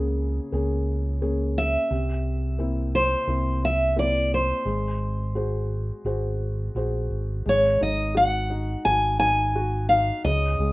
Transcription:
Already playing: fingered electric bass C#2, felt piano C#3 A#3 C#4 G#4, steel-string acoustic guitar F#5
0.52 fingered electric bass C#2, felt piano A#3 C#4 G#4
1.22 felt piano A#3 C#4 G#4
1.58 steel-string acoustic guitar E5
1.91 fingered electric bass C2, felt piano C3
2.59 felt piano A#3 C4 E4
2.95 steel-string acoustic guitar C5
3.27 fingered electric bass C2, felt piano A#3 C4 E4
3.65 steel-string acoustic guitar E5
3.96 felt piano A#3 C4 E4, steel-string acoustic guitar D5
4.34 steel-string acoustic guitar C5
4.65 fingered electric bass G#1, felt piano G#3
5.35 felt piano F#4 G#4 C5
6.05 fingered electric bass G#1, felt piano F#4 G#4 C5
6.75 fingered electric bass A#1, felt piano F#4 G#4 C5
7.10 fingered electric bass G#1
7.46 fingered electric bass G#1, felt piano G#3, steel-string acoustic guitar C#5
7.81 fingered electric bass G#1, felt piano D#4, steel-string acoustic guitar D#5
8.15 felt piano F#4, steel-string acoustic guitar F#5
8.50 felt piano D#4
8.85 fingered electric bass G#1, felt piano F#4, steel-string acoustic guitar G#5
9.20 felt piano D#4, steel-string acoustic guitar G#5
9.56 felt piano F#4
9.89 felt piano D#4, steel-string acoustic guitar F5
10.24 fingered electric bass C#2, felt piano C#3, steel-string acoustic guitar D#5
10.59 fingered electric bass C#2, felt piano G#3

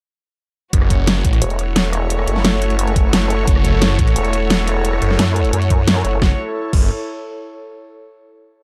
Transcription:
0.73 detuned saw bass F#1, string section A3 F#4 C#5, analog synth pad E4, kick, closed hi-hat
0.82 cross-stick
0.90 kick, closed hi-hat
0.98 analog synth pad C#5
1.07 snare, closed hi-hat
1.19 analog synth pad A4
1.25 detuned saw bass A1, kick, closed hi-hat
1.33 cross-stick, closed hi-hat
1.42 wobble bass E1, closed hi-hat
1.50 closed hi-hat
1.59 closed hi-hat
1.76 snare, closed hi-hat
1.93 cross-stick, closed hi-hat
2.10 closed hi-hat
2.19 cross-stick
2.27 wobble bass F#1, closed hi-hat
2.36 snare
2.45 snare, closed hi-hat
2.62 closed hi-hat
2.70 closed hi-hat
2.79 closed hi-hat
2.88 closed hi-hat
2.96 kick, closed hi-hat
3.13 wobble bass F#1, snare, closed hi-hat
3.30 closed hi-hat
3.48 detuned saw bass F#1, kick, closed hi-hat
3.56 cross-stick
3.65 kick, closed hi-hat
3.82 snare, closed hi-hat
3.99 detuned saw bass A1, kick, closed hi-hat
4.07 cross-stick, closed hi-hat
4.16 wobble bass E1, closed hi-hat
4.25 closed hi-hat
4.33 closed hi-hat
4.50 snare, closed hi-hat
4.67 cross-stick, closed hi-hat
4.85 closed hi-hat
4.93 cross-stick
5.02 detuned saw bass F#1, closed hi-hat
5.10 snare
5.19 wobble bass F#2, snare, closed hi-hat
5.36 closed hi-hat
5.45 closed hi-hat
5.53 wobble bass F#2, closed hi-hat
5.62 closed hi-hat
5.70 kick, closed hi-hat
5.88 snare, closed hi-hat
6.05 wobble bass F#1, closed hi-hat
6.22 detuned saw bass F#1, string section A3 F#4 C#5, analog synth pad E4, kick, snare
6.27 analog synth pad A4
6.32 analog synth pad C#5
6.73 detuned saw bass F#1, kick, crash

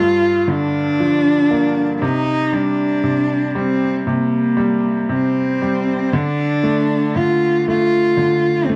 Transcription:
Already playing: upright piano G2, cello F4
0.48 upright piano D3, cello D4
1.00 upright piano F3
1.51 upright piano A#3
1.97 cello D4
2.02 upright piano C3, cello D#4
2.53 upright piano G3, cello D4
3.04 upright piano C3
3.55 upright piano G3, cello C4
4.07 upright piano C3, cello A#3
4.57 upright piano G3
5.09 upright piano C3, cello C4
5.62 upright piano G3
6.13 upright piano D3, cello D4
6.64 upright piano A3
7.16 upright piano D3, cello F4
7.68 upright piano A3, cello F4
8.17 upright piano D3
8.65 cello C4
8.69 upright piano A3, cello D4

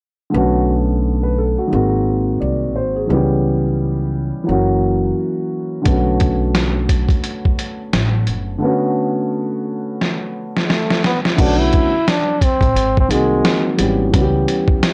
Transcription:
0.30 grand piano D3 A3 B3
0.34 upright bass B1, grand piano C#4 F#4
1.23 grand piano B4
1.38 grand piano A4
1.58 grand piano F#4
1.68 grand piano D#3 G#3 A#3
1.73 upright bass G#1, grand piano C4 F#4
2.40 upright bass C2, grand piano D5
2.76 upright bass G#1, grand piano C5
2.96 grand piano G#4
3.07 upright bass C#2, grand piano D#3 G3 B3
3.12 grand piano E3 C#4 G4
4.44 grand piano E3 F#3 A#3
4.49 upright bass F#1, grand piano C#4 F#4
5.82 grand piano D3 A3, kick, closed hi-hat
5.86 upright bass B1, grand piano B3 C#4
5.90 grand piano F#4
6.20 kick, closed hi-hat
6.55 snare, closed hi-hat
6.89 kick, closed hi-hat
7.09 kick, closed hi-hat
7.24 closed hi-hat
7.45 kick
7.59 closed hi-hat
7.93 upright bass A1, snare, closed hi-hat
8.27 upright bass F#1, closed hi-hat
8.58 grand piano D3 A3 B3
8.64 grand piano C#4 F#4
10.01 snare
10.57 snare
10.65 trombone G#3
10.70 trombone A3, snare
10.90 snare
11.04 trombone B3, snare
11.25 snare
11.36 upright bass B1, grand piano D3 A3 B3 C#4, trombone E4, kick, closed hi-hat, crash
11.40 trombone D4, grand piano F#4
11.61 trombone E4
11.73 kick, closed hi-hat
12.08 trombone D4, snare, closed hi-hat
12.41 trombone C4, kick, closed hi-hat
12.61 upright bass A1, kick, closed hi-hat
12.75 upright bass G#1, closed hi-hat
12.97 trombone C4, kick
13.08 upright bass C2, grand piano D#3 G#3 A#3 C4, trombone G#3, closed hi-hat
13.13 grand piano F#4
13.45 snare, closed hi-hat
13.77 upright bass G#1, grand piano E3 G3 B3 C#4 G4, closed hi-hat
14.11 upright bass C#2, grand piano E3 G3 B3 C#4, kick, closed hi-hat
14.15 grand piano F#4
14.21 grand piano G4
14.48 closed hi-hat
14.68 kick
14.83 snare, closed hi-hat

